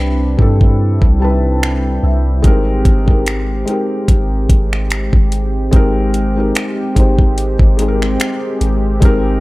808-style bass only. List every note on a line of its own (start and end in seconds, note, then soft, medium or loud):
0.00 0.37 C2 loud
0.39 1.00 G2 loud
1.02 1.99 C2 loud
2.03 2.43 C2 loud
2.44 2.84 G#1 loud
2.85 3.64 G#1 loud
4.09 4.48 G#1 loud
4.49 5.10 G#1 loud
5.13 5.71 G#1 medium
5.73 6.52 G#1 loud
6.96 7.57 G#1 loud
7.59 8.17 G#1 loud
8.61 9.00 G#1 loud
9.02 9.40 G#1 loud